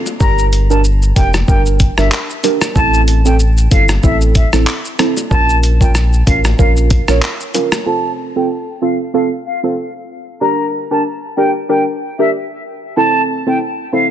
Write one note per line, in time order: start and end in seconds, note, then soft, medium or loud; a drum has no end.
0.06 high bongo medium
0.06 shaker medium
0.20 1.12 G1 loud
0.20 0.66 D4 medium
0.20 0.66 G4 medium
0.20 0.66 A#4 loud
0.20 0.45 A#5 loud
0.20 kick loud
0.20 shaker medium
0.39 shaker medium
0.53 closed hi-hat medium
0.53 shaker medium
0.70 0.82 D4 medium
0.70 0.83 G4 medium
0.70 0.83 A#4 medium
0.70 0.81 A5 medium
0.70 shaker medium
0.84 shaker medium
1.02 shaker soft
1.16 1.43 F1 medium
1.16 1.32 D4 medium
1.16 1.32 G4 medium
1.16 1.32 A#4 medium
1.16 1.30 G5 medium
1.16 kick loud
1.16 closed hi-hat medium
1.16 shaker medium
1.34 cross-stick medium
1.34 high bongo medium
1.34 shaker medium
1.48 1.91 G1 loud
1.48 1.93 D4 medium
1.48 1.94 G4 medium
1.48 1.94 A#4 loud
1.48 1.62 G5 medium
1.48 kick loud
1.48 shaker medium
1.66 shaker medium
1.80 kick loud
1.80 closed hi-hat medium
1.80 shaker medium
1.97 2.10 G1 medium
1.97 2.10 D4 medium
1.97 2.10 G4 medium
1.97 2.10 A#4 medium
1.97 2.09 E5 medium
1.97 cross-stick loud
1.97 shaker medium
2.12 clap loud
2.12 shaker medium
2.30 shaker medium
2.43 2.59 D4 medium
2.43 2.59 G4 medium
2.43 2.60 A#4 medium
2.43 closed hi-hat medium
2.43 low bongo medium
2.43 shaker medium
2.61 cross-stick loud
2.61 high bongo medium
2.61 shaker medium
2.76 3.67 A1 loud
2.76 3.21 C4 loud
2.76 3.21 E4 medium
2.76 3.21 A4 loud
2.76 3.01 A5 loud
2.76 kick loud
2.76 shaker medium
2.94 shaker medium
3.08 closed hi-hat medium
3.08 shaker medium
3.25 3.38 C4 medium
3.25 3.38 E4 medium
3.25 3.38 A4 medium
3.25 3.37 G5 medium
3.25 shaker medium
3.40 shaker medium
3.57 shaker soft
3.71 3.99 G1 loud
3.71 3.87 C4 medium
3.71 3.87 E4 medium
3.71 3.87 A4 medium
3.71 3.85 F5 medium
3.71 kick medium
3.71 closed hi-hat medium
3.71 shaker medium
3.89 cross-stick medium
3.89 high bongo medium
3.89 shaker medium
4.03 4.46 A1 loud
4.03 4.49 C4 medium
4.03 4.49 E4 medium
4.03 4.49 A4 loud
4.03 4.17 E5 medium
4.03 kick medium
4.03 shaker medium
4.21 shaker medium
4.35 4.49 E5 medium
4.35 kick loud
4.35 closed hi-hat medium
4.35 shaker medium
4.53 4.65 A1 medium
4.53 4.65 C4 medium
4.53 4.65 E4 medium
4.53 4.66 A4 medium
4.53 cross-stick medium
4.53 shaker medium
4.67 clap loud
4.67 shaker medium
4.85 shaker medium
4.99 5.14 C4 medium
4.99 5.15 E4 medium
4.99 5.15 A4 medium
4.99 cross-stick medium
4.99 closed hi-hat medium
4.99 low bongo medium
4.99 shaker soft
5.17 high bongo medium
5.17 shaker medium
5.31 6.23 A#1 loud
5.31 5.76 C#4 loud
5.31 5.77 F4 medium
5.31 5.77 A#4 loud
5.31 5.56 A5 loud
5.31 kick loud
5.31 shaker medium
5.49 shaker medium
5.63 closed hi-hat medium
5.63 shaker medium
5.81 5.93 C#4 medium
5.81 5.93 F4 medium
5.81 5.93 A#4 medium
5.81 5.92 G5 medium
5.81 kick loud
5.81 shaker medium
5.95 cross-stick medium
5.95 shaker medium
6.13 shaker soft
6.27 6.54 A1 loud
6.27 6.42 C#4 medium
6.27 6.42 F4 medium
6.27 6.43 A#4 medium
6.27 6.41 F5 medium
6.27 kick medium
6.27 closed hi-hat medium
6.27 shaker medium
6.45 cross-stick medium
6.45 high bongo medium
6.45 shaker medium
6.58 7.01 A#1 loud
6.58 7.04 C#4 medium
6.58 7.04 F4 medium
6.58 7.04 A#4 loud
6.58 6.73 F5 medium
6.58 kick loud
6.58 shaker medium
6.77 shaker soft
6.90 kick loud
6.90 closed hi-hat medium
6.90 shaker medium
7.08 7.20 A#1 loud
7.08 7.21 C#4 medium
7.08 7.21 F4 medium
7.08 7.21 A#4 medium
7.08 7.19 C#5 medium
7.08 cross-stick loud
7.08 shaker medium
7.22 clap loud
7.22 shaker medium
7.41 shaker medium
7.54 7.70 C#4 medium
7.54 7.70 F4 medium
7.54 7.70 A#4 medium
7.54 closed hi-hat medium
7.54 low bongo medium
7.54 shaker medium
7.72 cross-stick loud
7.72 high bongo medium
7.72 shaker medium
7.86 8.32 C4 medium
7.86 8.32 F4 medium
7.86 8.32 A4 loud
7.86 8.11 A5 loud
8.36 8.48 C4 medium
8.36 8.48 F4 medium
8.36 8.49 A4 medium
8.36 8.47 G5 medium
8.82 8.97 C4 medium
8.82 8.98 F4 medium
8.82 8.98 A4 medium
8.82 8.96 F5 medium
9.14 9.29 C4 medium
9.14 9.30 F4 medium
9.14 9.30 A4 loud
9.14 9.28 F5 medium
9.46 9.60 F5 medium
9.63 9.76 C4 medium
9.63 9.76 F4 medium
9.63 9.76 A4 medium
10.41 10.87 D4 medium
10.41 10.87 G4 medium
10.41 10.87 A#4 loud
10.41 10.67 A#5 loud
10.91 11.03 D4 medium
10.91 11.04 G4 medium
10.91 11.04 A#4 medium
10.91 11.02 A5 medium
11.37 11.53 D4 medium
11.37 11.53 G4 medium
11.37 11.53 A#4 medium
11.37 11.51 G5 medium
11.69 11.85 D4 medium
11.69 11.85 G4 medium
11.69 11.85 A#4 loud
11.69 11.83 G5 medium
12.19 12.31 D4 medium
12.19 12.32 G4 medium
12.19 12.32 A#4 medium
12.19 12.30 E5 medium
12.97 13.42 C4 medium
12.97 13.43 E4 medium
12.97 13.43 A4 loud
12.97 13.22 A5 loud
13.46 13.59 C4 medium
13.46 13.59 E4 medium
13.46 13.59 A4 medium
13.46 13.58 G5 medium
13.93 14.08 C4 medium
13.93 14.08 E4 medium
13.93 14.09 A4 medium
13.93 14.07 F5 medium